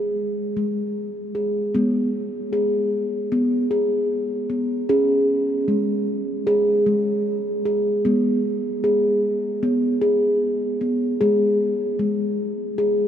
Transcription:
0.00 0.58 G#4 medium
0.57 1.35 G#3 medium
1.35 1.75 G#4 medium
1.75 4.86 G#3 medium
1.75 2.53 B3 medium
2.53 3.32 G#4 medium
3.32 3.71 B3 medium
3.71 4.50 G#4 medium
4.50 4.89 B3 medium
4.89 8.01 C#4 medium
4.89 5.68 G#4 medium
5.68 6.47 G#3 medium
6.47 6.86 G#4 medium
6.86 7.65 G#3 medium
7.65 8.05 G#4 medium
8.05 11.17 G#3 medium
8.05 8.84 B3 medium
8.84 9.63 G#4 medium
9.63 10.02 B3 medium
10.02 10.81 G#4 medium
10.81 11.20 B3 medium
11.21 11.98 G#3 medium
11.21 11.99 G#4 medium
11.99 12.78 G#3 medium
12.78 13.08 G#4 medium

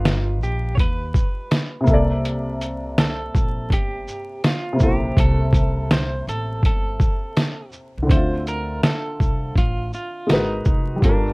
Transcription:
0.00 0.42 G1 loud
0.00 1.80 G3 medium
0.00 1.82 D#4 medium
0.00 0.43 F4 loud
0.00 1.84 F4 medium
0.00 1.85 G4 medium
0.00 1.87 B4 medium
0.05 snare loud
0.05 closed hi-hat medium
0.42 0.75 A#1 medium
0.42 0.75 G4 medium
0.42 shaker soft
0.75 1.11 D#2 medium
0.75 0.79 C#5 medium
0.75 kick medium
0.79 1.85 B4 loud
0.79 closed hi-hat medium
1.14 kick medium
1.14 shaker soft
1.51 snare loud
1.51 closed hi-hat medium
1.81 4.71 C3 medium
1.81 4.74 A#3 medium
1.87 3.30 C2 medium
1.87 4.78 A4 medium
1.87 4.76 E5 medium
1.87 kick loud
1.87 shaker soft
1.94 4.79 D5 medium
2.25 closed hi-hat medium
2.61 closed hi-hat medium
2.61 shaker medium
2.98 3.74 A4 medium
2.98 snare loud
2.98 closed hi-hat medium
3.35 3.68 A#1 loud
3.35 kick medium
3.35 shaker soft
3.70 4.04 G1 medium
3.70 4.46 G4 medium
3.70 kick medium
3.70 closed hi-hat medium
4.08 shaker soft
4.44 4.83 F4 medium
4.44 snare loud
4.44 closed hi-hat medium
4.73 7.65 C3 medium
4.73 7.67 A#3 medium
4.79 5.14 A#1 medium
4.79 7.68 E4 medium
4.79 5.19 G4 medium
4.79 7.70 A4 medium
4.79 kick medium
4.79 shaker soft
4.86 7.72 C5 medium
5.17 6.23 C2 loud
5.17 5.92 A4 loud
5.17 kick loud
5.17 closed hi-hat medium
5.53 kick loud
5.53 closed hi-hat soft
5.53 shaker medium
5.91 6.29 C5 loud
5.91 snare loud
5.91 closed hi-hat medium
6.27 6.60 A1 medium
6.27 6.62 A4 loud
6.27 closed hi-hat soft
6.27 shaker soft
6.63 6.97 G1 medium
6.63 7.70 A4 medium
6.63 kick medium
6.63 closed hi-hat medium
7.00 kick loud
7.00 shaker soft
7.37 snare loud
7.37 closed hi-hat medium
7.72 shaker soft
7.98 8.09 C2 medium
8.03 10.22 D3 medium
8.07 8.79 D2 loud
8.07 10.24 C4 medium
8.07 kick loud
8.07 closed hi-hat medium
8.11 8.44 C5 loud
8.11 10.26 E5 medium
8.16 10.28 F4 medium
8.47 8.84 A#4 loud
8.47 closed hi-hat medium
8.47 shaker medium
8.83 9.57 A4 medium
8.83 snare loud
8.83 closed hi-hat medium
9.20 9.53 C2 medium
9.20 kick medium
9.20 shaker soft
9.56 9.89 A1 medium
9.56 9.93 F4 medium
9.56 kick medium
9.56 closed hi-hat medium
9.93 10.31 F4 medium
9.93 shaker soft
10.27 10.63 G#1 medium
10.27 11.01 G#3 medium
10.27 11.02 F#4 medium
10.27 snare loud
10.27 closed hi-hat medium
10.31 10.99 D#4 medium
10.31 11.03 A#4 medium
10.31 11.04 B4 medium
10.65 10.99 F1 medium
10.65 kick medium
10.65 shaker soft
10.96 11.33 G3 medium
11.00 11.33 G1 loud
11.00 11.33 F4 medium
11.00 kick loud
11.00 closed hi-hat medium
11.05 11.33 D4 medium
11.05 11.33 A4 medium
11.09 11.33 A#4 medium

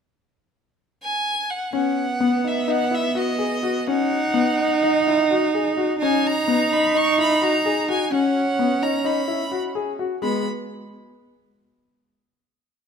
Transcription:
1.04 1.52 G#5 medium
1.50 1.74 F#5 medium
1.73 3.90 B3 medium
1.73 2.03 C#4 medium
1.73 2.49 F#5 medium
2.20 2.36 B3 medium
2.44 2.59 D#4 medium
2.44 2.72 E5 medium
2.68 2.83 D#4 medium
2.68 2.96 F#5 medium
2.91 3.06 E4 medium
2.91 3.19 E5 medium
3.15 3.30 F#4 medium
3.15 3.88 D#5 medium
3.39 3.54 G#4 medium
3.63 3.78 F#4 medium
3.87 4.17 C#4 medium
3.87 5.98 D#4 loud
3.87 5.26 F#5 medium
4.34 4.49 B3 medium
4.59 4.73 D#4 medium
4.83 4.97 D#4 medium
5.07 5.22 E4 medium
5.31 5.45 F#4 medium
5.54 5.69 G#4 medium
5.77 5.92 F#4 medium
5.98 6.31 C#4 medium
5.98 8.12 D#4 loud
6.03 6.28 G#5 medium
6.27 6.74 A#5 medium
6.48 6.62 B3 medium
6.71 6.86 D#4 medium
6.71 6.98 B5 medium
6.95 7.09 D#4 medium
6.95 7.19 C#6 medium
7.18 7.33 E4 medium
7.18 7.45 B5 medium
7.42 7.56 F#4 medium
7.42 7.89 A#5 medium
7.65 7.80 G#4 medium
7.89 8.03 F#4 medium
7.89 8.11 G#5 medium
8.11 9.99 C#4 medium
8.11 8.41 C#4 medium
8.11 8.84 F#5 medium
8.59 8.74 B3 medium
8.82 8.97 D#4 medium
8.82 9.07 A#5 medium
9.05 9.20 D#4 medium
9.05 9.58 B5 medium
9.28 9.43 E4 medium
9.52 9.66 F#4 medium
9.75 9.90 G#4 medium
9.99 10.14 F#4 medium
10.22 10.44 G#3 medium
10.22 10.45 B3 medium
10.22 10.45 B5 medium

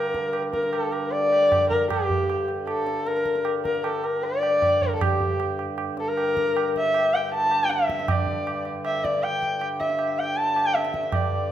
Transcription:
0.00 1.90 G2 medium
0.00 1.90 D3 medium
0.00 0.43 A#4 loud
0.14 tabla ke medium
0.33 tabla na medium
0.53 0.75 A#4 medium
0.53 tabla ke medium
0.63 tabla te medium
0.73 0.94 A4 medium
0.73 tabla na medium
0.92 1.13 A#4 medium
0.92 tabla na medium
1.12 1.69 D5 loud
1.12 tabla tin medium
1.32 tabla na medium
1.52 tabla na medium
1.52 tabla ge medium
1.70 1.89 A#4 medium
1.70 tabla ge medium
1.90 8.08 G2 medium
1.90 8.08 D3 medium
1.90 2.45 G4 medium
1.90 tabla na loud
1.90 tabla ge medium
2.10 tabla ge medium
2.30 tabla na medium
2.48 tabla na medium
2.67 3.08 A4 medium
2.67 tabla na medium
2.87 tabla te medium
3.06 3.46 A#4 medium
3.06 tabla te medium
3.17 tabla te medium
3.25 tabla ke medium
3.35 tabla te medium
3.45 tabla na medium
3.64 3.82 A#4 medium
3.64 tabla ke medium
3.75 tabla te medium
3.82 4.06 A4 medium
3.82 3.85 A#4 medium
3.82 tabla na medium
4.04 4.25 A#4 medium
4.04 tabla na medium
4.23 4.84 D5 loud
4.23 tabla tin medium
4.43 tabla na medium
4.62 tabla na medium
4.62 tabla ge medium
4.82 4.95 A#4 medium
4.82 tabla ge medium
4.95 5.04 A4 medium
5.01 5.60 G4 medium
5.01 tabla na loud
5.01 tabla ge medium
5.21 tabla ge medium
5.40 tabla na medium
5.59 tabla na medium
5.78 tabla na medium
5.97 6.10 A4 medium
5.97 tabla te medium
6.08 6.66 A#4 loud
6.17 tabla na medium
6.37 tabla ke medium
6.57 tabla na medium
6.76 7.15 E5 loud
6.76 tabla ke medium
6.86 tabla te medium
6.94 tabla na medium
7.13 7.33 G5 medium
7.13 tabla na medium
7.33 7.65 A5 loud
7.33 tabla tin medium
7.51 tabla na medium
7.64 7.72 G5 medium
7.70 8.12 E5 medium
7.70 tabla te medium
7.80 tabla te medium
7.89 tabla ke medium
7.99 tabla te medium
8.08 11.52 G2 medium
8.08 11.52 D3 medium
8.08 8.68 D5 medium
8.08 tabla na loud
8.08 tabla ge loud
8.27 tabla ge medium
8.47 tabla na medium
8.65 tabla na medium
8.85 9.06 E5 medium
8.85 tabla na medium
9.04 9.25 D5 medium
9.04 tabla ke medium
9.14 tabla te medium
9.23 9.62 G5 medium
9.23 tabla na medium
9.43 tabla ke medium
9.61 tabla na medium
9.80 10.21 E5 medium
9.80 tabla ke medium
9.90 tabla te medium
9.99 tabla na medium
10.18 10.38 G5 medium
10.18 tabla na medium
10.37 10.68 A5 loud
10.37 tabla tin medium
10.56 tabla na medium
10.66 10.76 G5 medium
10.74 11.16 E5 medium
10.74 tabla te medium
10.85 tabla te medium
10.94 tabla ke medium
11.03 tabla te medium
11.12 11.52 D5 medium
11.12 tabla na loud
11.12 tabla ge medium
11.32 tabla ge medium

